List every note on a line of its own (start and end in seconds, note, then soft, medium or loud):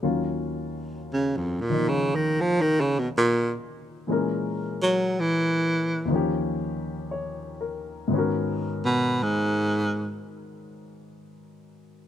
0.02 4.07 D#2 soft
0.02 1.68 D#3 soft
0.02 4.07 F#3 soft
0.02 4.08 C#4 soft
0.02 4.08 F4 soft
1.13 1.38 C#3 medium
1.37 1.62 F2 medium
1.61 1.90 A#2 medium
1.70 4.07 D#3 soft
1.70 4.07 F3 soft
1.70 4.08 A#3 soft
1.70 4.09 D#4 soft
1.88 2.17 C#3 medium
2.15 2.42 D#3 medium
2.41 2.63 F3 medium
2.61 2.82 D#3 medium
2.81 3.00 C#3 medium
2.99 3.08 B2 medium
3.18 3.54 A#2 medium
4.07 6.09 A#2 soft
4.07 6.10 E3 soft
4.07 6.10 G#3 soft
4.07 6.11 C#4 soft
4.12 6.12 A#4 medium
4.82 5.21 F#3 medium
5.20 6.15 E3 medium
6.05 8.09 D#2 soft
6.05 8.08 D#3 soft
6.10 8.11 F3 medium
6.10 8.12 C#4 soft
6.16 8.14 G4 medium
7.11 7.90 C#5 soft
7.61 8.17 A#4 soft
8.08 12.08 G#2 soft
8.08 12.08 D#3 soft
8.08 12.08 B3 soft
8.13 12.08 C#4 soft
8.13 12.08 F#4 soft
8.19 12.08 A#4 medium
8.85 9.24 B2 medium
9.23 10.18 G#2 medium